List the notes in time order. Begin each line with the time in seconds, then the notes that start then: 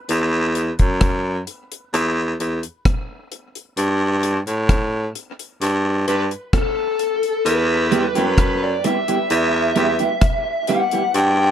0.09 E2, closed hi-hat
0.55 closed hi-hat
0.79 F#2, kick, closed hi-hat
1.01 kick, cross-stick, closed hi-hat
1.47 closed hi-hat
1.72 closed hi-hat
1.94 E2, closed hi-hat
2.40 E2, closed hi-hat
2.63 closed hi-hat
2.85 kick, cross-stick, closed hi-hat
3.32 closed hi-hat
3.55 closed hi-hat
3.77 G2, closed hi-hat
4.23 closed hi-hat
4.47 A2, closed hi-hat
4.69 kick, cross-stick, closed hi-hat
5.15 closed hi-hat
5.39 closed hi-hat
5.62 G2, closed hi-hat
6.07 G2 B4, closed hi-hat
6.31 closed hi-hat
6.53 A4, kick, cross-stick, closed hi-hat
6.99 closed hi-hat
7.23 closed hi-hat
7.45 E2 B4, closed hi-hat
7.91 G3 B3 E4 G4, closed hi-hat
8.15 F#2 G3 B3 E4 G4, closed hi-hat
8.38 B4, kick, cross-stick, closed hi-hat
8.63 D5
8.84 G3 B3 E4 G4 E5, closed hi-hat
9.08 G3 B3 E4 G4, closed hi-hat
9.30 E2, closed hi-hat
9.76 E2 G3 B3 E4 G4, closed hi-hat
9.99 G3 B3 E4 G4, closed hi-hat
10.21 kick, cross-stick, closed hi-hat
10.67 G3 B3 E4 G4 F#5, closed hi-hat
10.91 G3 B3 E4 G4, closed hi-hat
11.14 G2 G5, closed hi-hat